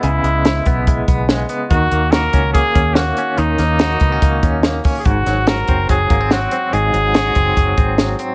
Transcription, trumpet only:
\new Staff \with { instrumentName = "Trumpet" } { \time 4/4 \key dis \phrygian \tempo 4 = 143 e'2~ e'8 r4. | fis'4 ais'4 gis'4 fis'4 | dis'2.~ \tuplet 3/2 { dis'8. r8 gis'16 } | fis'4 ais'4 gis'4 fis'4 |
gis'2.~ gis'8 r8 | }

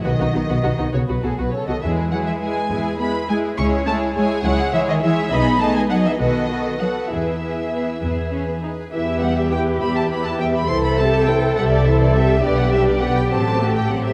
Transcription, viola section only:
\new Staff \with { instrumentName = "Viola section" } { \time 6/8 \key e \major \tempo 4. = 68 <b fis'>16 <b fis'>16 <b fis'>16 <b fis'>16 <b fis'>16 <b fis'>16 <b fis'>16 <b fis'>16 <b fis'>16 <b fis'>16 r16 <b fis'>16 | <gis e'>8 <gis e'>8 <gis e'>8 <gis e'>8 <gis e'>8 <gis e'>8 | <gis e'>8 <gis e'>8 <gis e'>8 <gis e'>8 <gis e'>8 <gis e'>8 | <b dis'>8 <b dis'>8 <b dis'>8 <b fis'>8 <b fis'>8 <b fis'>8 |
<b e'>8 <b e'>8 <b e'>8 b8 cis'16 b16 dis'8 | \key e \minor <e e'>8 <g b>8 <e e'>8 <g b>8 <e e'>8 <g b>8 | <e e'>8 <g c'>8 <e e'>8 <g c'>8 <e e'>8 <g c'>8 | <d b>8 <g d'>8 <d b>8 <fis c'>8 a8 <fis c'>8 | }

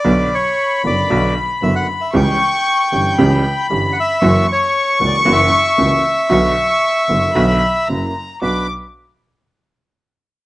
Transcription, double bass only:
\new Staff \with { instrumentName = "Double bass" } { \clef bass \time 4/4 \key b \minor \tempo 4 = 115 b,,8 r4 fis,,8 b,,8 r8 fis,,8 r8 | cis,8 r4 g,,8 cis,8 r8 g,,8 r8 | fis,,8 r4 cis,8 fis,,8 r8 cis,8 r8 | b,,8 r4 fis,,8 b,,8 r8 fis,,8 r8 |
b,,8 r2. r8 | }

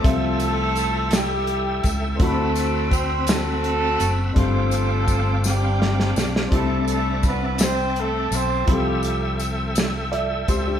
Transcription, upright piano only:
\new Staff \with { instrumentName = "Upright piano" } { \time 6/8 \key f \lydian \tempo 4. = 56 << { c4. r4. | d4. r4. | g,4. r4. | c4. r4. |
c4. r8 <a' d'' e''>8 <g' c''>16 <d' g'>16 | } \\ { <f c' g' a' e''>2. | <c' d' e' fis' b''>2. | <c' d' f' g' c''>2. | <c' d' ees' e' g' a'>2. |
<f c' e' g' a'>2. | } >> }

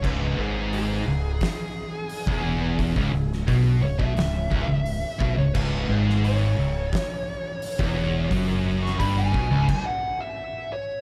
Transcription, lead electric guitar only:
\new Staff \with { instrumentName = "Lead electric guitar" } { \time 4/4 \key cis \minor \tempo 4 = 87 b'8 gis'8 gis'2. | r4. cis''16 e''2 cis''16 | b'8 gis'8 cis''2. | r8. cis'''16 b''16 gis''4 fis''8 e''8. cis''8 | }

